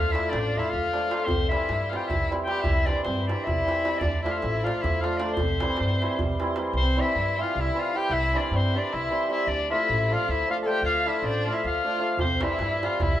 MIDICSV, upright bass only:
0, 0, Header, 1, 2, 480
1, 0, Start_track
1, 0, Key_signature, 0, "major"
1, 0, Tempo, 389358
1, 1582, Time_signature, 7, 3, 24, 8
1, 16273, End_track
2, 0, Start_track
2, 0, Title_t, "Upright bass"
2, 0, Program_c, 0, 32
2, 0, Note_on_c, 0, 38, 79
2, 193, Note_off_c, 0, 38, 0
2, 406, Note_on_c, 0, 33, 75
2, 709, Note_off_c, 0, 33, 0
2, 903, Note_on_c, 0, 38, 77
2, 1058, Note_off_c, 0, 38, 0
2, 1569, Note_on_c, 0, 36, 70
2, 1876, Note_off_c, 0, 36, 0
2, 2084, Note_on_c, 0, 43, 72
2, 2388, Note_off_c, 0, 43, 0
2, 2583, Note_on_c, 0, 36, 77
2, 2739, Note_off_c, 0, 36, 0
2, 3260, Note_on_c, 0, 36, 82
2, 3565, Note_off_c, 0, 36, 0
2, 3771, Note_on_c, 0, 43, 84
2, 4074, Note_off_c, 0, 43, 0
2, 4277, Note_on_c, 0, 36, 77
2, 4429, Note_off_c, 0, 36, 0
2, 4947, Note_on_c, 0, 38, 72
2, 5250, Note_off_c, 0, 38, 0
2, 5462, Note_on_c, 0, 33, 82
2, 5762, Note_off_c, 0, 33, 0
2, 5963, Note_on_c, 0, 38, 92
2, 6114, Note_off_c, 0, 38, 0
2, 6642, Note_on_c, 0, 36, 82
2, 6941, Note_off_c, 0, 36, 0
2, 7153, Note_on_c, 0, 43, 68
2, 7450, Note_off_c, 0, 43, 0
2, 7642, Note_on_c, 0, 36, 78
2, 7793, Note_off_c, 0, 36, 0
2, 8298, Note_on_c, 0, 36, 82
2, 8604, Note_off_c, 0, 36, 0
2, 8821, Note_on_c, 0, 43, 78
2, 9121, Note_off_c, 0, 43, 0
2, 9314, Note_on_c, 0, 36, 90
2, 9467, Note_off_c, 0, 36, 0
2, 9980, Note_on_c, 0, 36, 83
2, 10285, Note_off_c, 0, 36, 0
2, 10490, Note_on_c, 0, 43, 75
2, 10793, Note_off_c, 0, 43, 0
2, 11019, Note_on_c, 0, 36, 74
2, 11164, Note_off_c, 0, 36, 0
2, 11675, Note_on_c, 0, 38, 84
2, 11974, Note_off_c, 0, 38, 0
2, 12194, Note_on_c, 0, 33, 82
2, 12489, Note_off_c, 0, 33, 0
2, 12676, Note_on_c, 0, 38, 84
2, 12828, Note_off_c, 0, 38, 0
2, 13336, Note_on_c, 0, 38, 89
2, 13640, Note_off_c, 0, 38, 0
2, 13837, Note_on_c, 0, 33, 80
2, 14143, Note_off_c, 0, 33, 0
2, 14352, Note_on_c, 0, 38, 79
2, 14505, Note_off_c, 0, 38, 0
2, 15007, Note_on_c, 0, 36, 70
2, 15314, Note_off_c, 0, 36, 0
2, 15522, Note_on_c, 0, 43, 74
2, 15826, Note_off_c, 0, 43, 0
2, 16027, Note_on_c, 0, 36, 83
2, 16180, Note_off_c, 0, 36, 0
2, 16273, End_track
0, 0, End_of_file